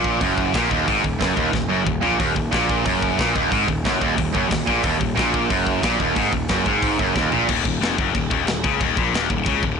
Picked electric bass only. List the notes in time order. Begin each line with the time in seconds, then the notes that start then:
Already playing: A#1
0.21 F#1
0.55 A#1
0.71 D#1
0.88 G#1
1.05 D#1
1.21 F#1
1.37 D#1
1.54 D#1
1.70 F#1
1.86 D#1
2.04 A#1
2.20 D#1
2.36 D#1
2.53 A#1
2.86 F#1
3.19 A#1
3.36 D#1
3.52 G#1
3.69 D#1
3.86 F#1
4.02 D#1
4.18 D#1
4.35 F#1
4.51 D#1
4.68 A#1
4.84 D#1
5.01 D#1
5.18 A#1
5.50 F#1
5.84 A#1
6.00 D#1
6.17 G#1
6.33 D#1
6.50 F#1
6.66 G#1
6.99 F#1
7.16 D#1
7.32 A#1
7.49 D#1
7.66 D#1
7.81 F1
7.99 F#1
8.15 D#1
8.32 D#1
8.49 D#1
8.64 C#2
8.81 D#1
8.98 A#1
9.12 D#1
9.30 D#1
9.46 C#2
9.63 D#1